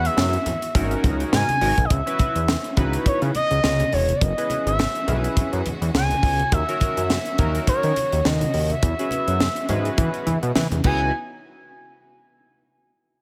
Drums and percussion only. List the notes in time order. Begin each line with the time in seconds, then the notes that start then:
0.05 closed hi-hat
0.18 snare, high conga
0.33 closed hi-hat
0.46 closed hi-hat, low conga
0.62 closed hi-hat
0.75 kick, closed hi-hat, muted conga, low conga
0.91 closed hi-hat
1.04 kick, closed hi-hat, muted conga, low conga
1.20 closed hi-hat
1.33 snare, high conga
1.49 closed hi-hat, high conga
1.61 open hi-hat
1.78 kick, closed hi-hat
1.90 kick, closed hi-hat, muted conga
2.07 closed hi-hat
2.19 kick, closed hi-hat, muted conga
2.36 closed hi-hat
2.48 snare, high conga
2.64 closed hi-hat
2.77 kick, closed hi-hat, low conga
2.93 closed hi-hat
3.06 kick, closed hi-hat
3.22 closed hi-hat
3.35 closed hi-hat, muted conga
3.51 closed hi-hat
3.64 snare, high conga
3.80 closed hi-hat, high conga
3.93 open hi-hat
4.09 closed hi-hat, high conga
4.21 kick, closed hi-hat, muted conga
4.38 closed hi-hat
4.50 closed hi-hat, muted conga
4.67 closed hi-hat
4.79 snare, high conga
4.95 closed hi-hat
5.08 closed hi-hat, low conga
5.24 closed hi-hat
5.37 kick, closed hi-hat, muted conga, low conga
5.53 closed hi-hat
5.66 closed hi-hat, muted conga, low conga
5.82 closed hi-hat
5.95 snare, high conga
6.11 closed hi-hat, high conga
6.23 kick, open hi-hat
6.39 closed hi-hat, high conga
6.52 kick, closed hi-hat, muted conga
6.69 closed hi-hat
6.80 kick, closed hi-hat, muted conga
6.97 closed hi-hat
7.10 snare, high conga
7.26 closed hi-hat
7.38 kick, closed hi-hat, low conga
7.55 closed hi-hat
7.67 kick, closed hi-hat, muted conga
7.83 closed hi-hat
7.96 closed hi-hat, muted conga
8.12 closed hi-hat
8.25 snare, high conga
8.41 closed hi-hat, high conga
8.54 open hi-hat
8.70 closed hi-hat, high conga
8.83 kick, closed hi-hat, muted conga
8.99 closed hi-hat
9.11 closed hi-hat, muted conga
9.28 closed hi-hat
9.40 snare, high conga
9.56 closed hi-hat
9.69 closed hi-hat, low conga
9.85 closed hi-hat
9.98 kick, closed hi-hat, muted conga, low conga
10.14 closed hi-hat
10.27 closed hi-hat, muted conga, low conga
10.43 closed hi-hat
10.55 snare, high conga
10.72 closed hi-hat, high conga
10.84 kick, crash, muted conga